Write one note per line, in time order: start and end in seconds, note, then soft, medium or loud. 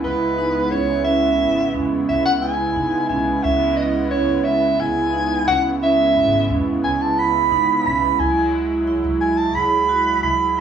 0.00 3.40 C#3 medium
0.00 3.40 G#3 medium
0.00 3.40 B3 medium
0.00 3.40 E4 medium
0.00 0.72 B4 medium
0.04 0.61 C#2 medium
0.04 0.34 E4 medium
0.38 0.68 D#4 medium
0.71 1.41 C#2 medium
0.71 1.02 C#4 medium
0.71 1.04 C#5 medium
1.04 1.66 C#4 medium
1.04 1.76 E5 medium
1.41 1.76 G#1 medium
1.74 2.02 E2 medium
1.74 2.34 C#4 medium
2.09 2.65 C#2 medium
2.09 2.24 E5 medium
2.25 2.33 F#5 medium
2.42 2.72 E4 medium
2.42 3.06 G#5 medium
2.76 2.90 C#3 medium
2.76 3.06 D#4 medium
3.09 3.24 B1 medium
3.09 3.40 C#4 medium
3.09 3.45 G#5 medium
3.43 4.14 C#2 medium
3.43 8.15 C#3 medium
3.43 8.15 G#3 medium
3.43 8.15 B3 medium
3.43 4.04 C#4 medium
3.43 8.15 E4 medium
3.43 3.76 E5 medium
3.77 4.09 D#5 medium
4.11 4.71 C#4 medium
4.11 4.46 C#5 medium
4.29 4.71 C#2 medium
4.44 4.82 E5 medium
4.80 5.36 C#2 medium
4.80 5.10 E4 medium
4.80 5.47 G#5 medium
5.13 5.43 D#4 medium
5.47 6.17 C#2 medium
5.47 5.78 C#4 medium
5.47 5.63 F#5 medium
5.82 6.41 C#4 medium
5.82 6.53 E5 medium
6.16 6.51 G#1 medium
6.50 6.78 E2 medium
6.50 7.09 C#4 medium
6.84 7.40 C#2 medium
6.84 7.03 G#5 medium
7.02 7.20 A5 medium
7.18 7.48 E4 medium
7.18 7.85 B5 medium
7.51 7.65 C#3 medium
7.51 7.81 D#4 medium
7.85 7.99 B1 medium
7.85 8.16 C#4 medium
7.85 8.21 B5 medium
8.19 8.89 C#2 medium
8.19 10.60 F#3 medium
8.19 10.60 G#3 medium
8.19 10.60 E4 medium
8.19 8.79 E4 medium
8.19 8.53 G#5 medium
8.87 9.47 E4 medium
9.04 9.46 C#2 medium
9.21 9.39 G#5 medium
9.37 9.56 A5 medium
9.55 10.11 C#2 medium
9.55 9.85 G#4 medium
9.55 10.22 B5 medium
9.89 10.18 F#4 medium
10.22 10.60 C#2 medium
10.22 10.52 E4 medium
10.22 10.60 B5 medium
10.57 10.60 E4 medium